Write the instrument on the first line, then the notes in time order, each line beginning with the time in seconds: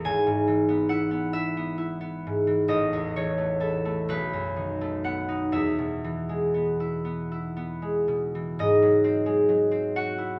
harp
Already playing: E4
0.05 G#1 G#5
0.27 G#2
0.47 E3
0.69 B3
0.89 E4 F#5
1.11 B3
1.33 E4 E5
1.57 B3
1.78 E4
2.01 B3
2.27 G#2
2.47 E3
2.68 A1 D#5
2.93 E2
3.16 E3 C#5
3.38 A3
3.60 E4 A4
3.85 A3
4.09 B1 B4
4.33 F#2
4.56 D#3
4.81 A3
5.04 B3 F#5
5.29 D#4
5.52 E2 E5
5.78 B2
6.04 E3
6.29 G#3
6.54 B3
6.80 E4
7.05 B3
7.32 E4
7.57 B3
7.82 G#3
8.08 B2
8.35 E3
8.59 G#2 D#5
8.82 F#3
9.04 C4
9.26 G#3
9.49 F#3
9.71 C4
9.96 F#4 F#5
10.18 E4